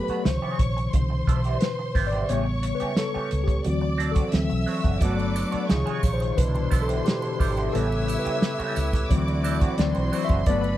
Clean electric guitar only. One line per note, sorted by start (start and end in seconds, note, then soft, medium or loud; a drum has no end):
0.10 0.22 F#3 soft
0.10 0.21 B3 soft
0.10 0.21 D4 soft
0.10 0.21 F#4 soft
0.26 muted clean electric guitar stroke soft
0.42 0.58 G#3 medium
0.42 0.59 C4 medium
0.42 0.59 F4 medium
0.42 0.59 G#4 medium
0.59 muted clean electric guitar stroke soft
0.77 muted clean electric guitar stroke soft
0.93 muted clean electric guitar stroke soft
1.10 muted clean electric guitar stroke soft
1.27 1.39 G3 medium
1.27 1.39 B3 medium
1.27 1.40 E4 medium
1.27 1.40 A4 medium
1.45 1.57 G3 soft
1.45 1.57 B3 soft
1.45 1.57 E4 soft
1.45 1.56 G4 soft
1.63 muted clean electric guitar stroke soft
1.79 muted clean electric guitar stroke soft
1.95 2.07 G3 medium
1.95 2.07 B3 medium
1.95 2.07 E4 medium
1.95 2.08 G4 medium
2.12 2.25 G3 soft
2.12 2.24 B3 medium
2.12 2.24 E4 medium
2.12 2.24 G4 medium
2.28 2.44 E3 medium
2.28 2.44 A3 medium
2.28 2.44 C#4 medium
2.28 2.44 G4 medium
2.63 muted clean electric guitar stroke soft
2.80 2.93 E3 soft
2.80 2.93 A3 medium
2.80 2.92 C#4 soft
2.80 2.92 G4 soft
2.97 muted clean electric guitar stroke soft
3.14 3.30 E3 medium
3.14 3.30 A3 medium
3.14 3.29 C#4 medium
3.14 3.29 G4 medium
3.31 muted clean electric guitar stroke soft
3.47 muted clean electric guitar stroke soft
3.64 muted clean electric guitar stroke soft
3.81 muted clean electric guitar stroke soft
3.98 4.10 F#3 medium
3.98 4.10 C4 medium
3.98 4.11 D4 medium
3.98 4.11 A4 medium
4.14 4.28 F#3 soft
4.14 4.28 C4 soft
4.14 4.27 D4 soft
4.14 4.27 F#4 medium
4.32 muted clean electric guitar stroke soft
4.49 muted clean electric guitar stroke soft
4.66 4.78 F#3 medium
4.66 4.79 C4 medium
4.66 4.79 D4 medium
4.66 4.80 F#4 medium
4.84 4.97 F#3 soft
4.84 4.96 C4 soft
4.84 4.96 D4 soft
4.84 4.96 F#4 medium
5.00 5.15 F#3 medium
5.00 5.16 B3 medium
5.00 5.16 D4 medium
5.00 5.16 F#4 medium
5.17 muted clean electric guitar stroke soft
5.36 muted clean electric guitar stroke soft
5.52 5.64 F#3 soft
5.52 5.64 B3 soft
5.52 5.64 D4 soft
5.52 5.64 F#4 soft
5.69 muted clean electric guitar stroke soft
5.86 6.02 G#3 medium
5.86 6.01 C4 medium
5.86 6.01 F4 medium
5.86 6.01 G#4 medium
6.21 muted clean electric guitar stroke soft
6.38 muted clean electric guitar stroke soft
6.55 muted clean electric guitar stroke soft
6.71 6.83 G3 medium
6.71 6.83 B3 medium
6.71 6.84 E4 medium
6.71 6.84 A4 medium
6.88 7.01 G3 soft
6.88 7.00 B3 soft
6.88 7.00 E4 soft
6.88 7.00 G4 medium
7.05 muted clean electric guitar stroke soft
7.23 muted clean electric guitar stroke soft
7.40 7.51 G3 medium
7.40 7.51 B3 medium
7.40 7.52 E4 medium
7.40 7.52 G4 medium
7.56 7.69 G3 soft
7.56 7.69 B3 soft
7.56 7.69 E4 soft
7.56 7.68 G4 soft
7.73 7.88 E3 medium
7.73 7.88 A3 medium
7.73 7.89 C#4 medium
7.73 7.89 G4 medium
8.07 muted clean electric guitar stroke soft
8.25 8.37 E3 soft
8.25 8.37 A3 medium
8.25 8.37 C#4 medium
8.25 8.36 G4 medium
8.42 muted clean electric guitar stroke soft
8.59 8.75 E3 medium
8.59 8.76 A3 medium
8.59 8.77 C#4 medium
8.59 8.77 G4 medium
8.77 muted clean electric guitar stroke soft
8.94 muted clean electric guitar stroke medium
9.10 muted clean electric guitar stroke soft
9.27 muted clean electric guitar stroke soft
9.44 9.56 F#3 medium
9.44 9.56 C4 medium
9.44 9.56 D4 medium
9.44 9.56 A4 medium
9.61 9.73 F#3 soft
9.61 9.73 C4 soft
9.61 9.73 D4 medium
9.61 9.73 F#4 medium
9.78 muted clean electric guitar stroke soft
9.96 muted clean electric guitar stroke soft
10.12 10.24 F#3 medium
10.12 10.24 C4 medium
10.12 10.24 D4 medium
10.12 10.25 F#4 medium
10.30 10.42 F#3 soft
10.30 10.42 C4 soft
10.30 10.42 D4 soft
10.30 10.41 F#4 medium
10.47 10.61 F#3 medium
10.47 10.61 B3 medium
10.47 10.62 D4 medium
10.47 10.62 F#4 medium